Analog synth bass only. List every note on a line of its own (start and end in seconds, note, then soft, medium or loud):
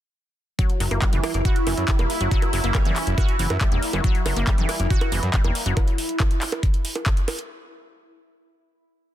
0.80 0.88 F#1 loud
0.91 0.99 F#1 medium
1.13 1.20 F#1 medium
1.34 1.42 F#1 medium
1.67 1.74 F#1 medium
1.77 1.85 F#2 medium
1.99 2.06 E1 medium
2.21 2.28 F#1 medium
2.53 2.60 F#1 loud
2.64 2.71 F#1 medium
2.85 2.93 F#1 medium
3.07 3.14 F#1 medium
3.39 3.47 F#1 medium
3.50 3.58 F#2 medium
3.72 3.79 E1 medium
3.93 4.01 F#1 medium
4.26 4.33 F#1 loud
4.36 4.44 F#1 medium
4.58 4.65 F#1 medium
4.80 4.87 F#1 medium
5.12 5.19 F#1 loud
5.23 5.30 F#2 medium
5.44 5.52 E1 medium
5.66 5.73 F#1 medium